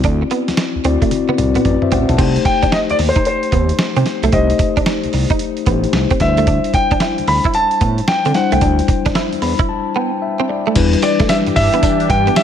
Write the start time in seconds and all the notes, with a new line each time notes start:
Already playing: C4 E4 F#4 D5
0.04 D2 D4, kick, closed hi-hat
0.22 muted clean electric guitar stroke
0.31 B3, closed hi-hat
0.48 D2, snare, closed hi-hat
0.57 muted clean electric guitar stroke, snare, closed hi-hat
0.75 D2
0.84 D2 C4 E4 F#4 D5, closed hi-hat
1.02 A3, kick, closed hi-hat
1.11 closed hi-hat, high tom
1.29 B3, high tom
1.38 C2 C4 E4 F#4 D5, muted clean electric guitar stroke, closed hi-hat, mid tom
1.55 B3, closed hi-hat, mid tom
1.65 A1 B4 D5, closed hi-hat, mid tom
1.82 C5 E5, mid tom
1.92 A1 C4 D5 F#5, closed hi-hat, floor tom
2.09 B1 F#5 A5, closed hi-hat, floor tom
2.18 C2 A3 C4 D#4 G4 C5, kick, closed hi-hat, crash
2.36 closed hi-hat
2.45 G5, muted clean electric guitar stroke, kick, closed hi-hat
2.63 D#2 D4, kick, closed hi-hat
2.72 D#4 D#5, snare, closed hi-hat
2.90 D#2 D5, closed hi-hat
2.99 D#2, muted clean electric guitar stroke, open hi-hat
3.09 C5
3.16 D#4, kick, closed hi-hat
3.25 C5, closed hi-hat
3.43 closed hi-hat
3.52 D#2 B3, kick, closed hi-hat
3.69 closed hi-hat
3.79 snare, closed hi-hat
3.96 C3 C4, closed hi-hat
4.06 muted clean electric guitar stroke, snare, closed hi-hat
4.23 B1 A3, closed hi-hat
4.32 C2 A3 C4 D#4 G4 C5 D#5, kick, closed hi-hat
4.50 closed hi-hat
4.59 muted clean electric guitar stroke, kick, closed hi-hat
4.77 C2 D4, kick, closed hi-hat
4.86 D#4, snare, closed hi-hat
5.04 C2, closed hi-hat
5.13 C2, muted clean electric guitar stroke, open hi-hat
5.30 D#4, kick, closed hi-hat
5.39 closed hi-hat
5.57 closed hi-hat
5.66 A1 A3 B3 D#4 G4 C5, kick, closed hi-hat
5.84 closed hi-hat
5.93 C2, snare, closed hi-hat
6.10 C4, kick, closed hi-hat
6.19 D2 G3 D4 E4 B4 E5, muted clean electric guitar stroke, kick, snare, closed hi-hat
6.28 C5
6.37 A3, closed hi-hat
6.47 D4, kick, closed hi-hat
6.64 closed hi-hat
6.74 G5, muted clean electric guitar stroke, kick, closed hi-hat
6.91 D2 D4, kick, closed hi-hat
7.00 E4, snare, closed hi-hat
7.18 D2, closed hi-hat
7.27 D2 B5, muted clean electric guitar stroke, open hi-hat
7.44 E4, kick, closed hi-hat
7.54 A5, closed hi-hat
7.71 closed hi-hat
7.81 A2 B3, kick, closed hi-hat
7.98 closed hi-hat
8.08 G5, snare, closed hi-hat
8.25 D3 C4, closed hi-hat
8.34 G3 D4 E4 C5 F#5, muted clean electric guitar stroke, snare, closed hi-hat
8.52 C2 A3 G5, closed hi-hat
8.61 D2 D4, kick, closed hi-hat
8.79 closed hi-hat
8.88 muted clean electric guitar stroke, kick, closed hi-hat
9.06 E2 D4, kick, snare, closed hi-hat
9.15 E4, snare, closed hi-hat
9.32 E2, closed hi-hat
9.42 E2 B5, muted clean electric guitar stroke, open hi-hat
9.59 E4, kick, closed hi-hat
9.69 A5
9.95 B3 G5
10.22 E5
10.40 C4
10.49 D5, muted clean electric guitar stroke
10.67 A3
10.74 E2 E3 G3 D4 E4 G4 B4, kick, closed hi-hat, crash, tambourine
10.93 muted clean electric guitar stroke, closed hi-hat
11.02 G3 D5, closed hi-hat, tambourine
11.20 G2 A3, kick, snare, closed hi-hat
11.29 G3 E5, snare, closed hi-hat, tambourine
11.46 G2, muted clean electric guitar stroke, closed hi-hat
11.56 G2 E5, kick, open hi-hat, tambourine
11.73 B3, closed hi-hat
11.83 D4, kick, closed hi-hat, tambourine
12.00 closed hi-hat
12.10 G2 G5, muted clean electric guitar stroke, kick, closed hi-hat
12.27 B3, closed hi-hat
12.36 G3 E5, snare, closed hi-hat, tambourine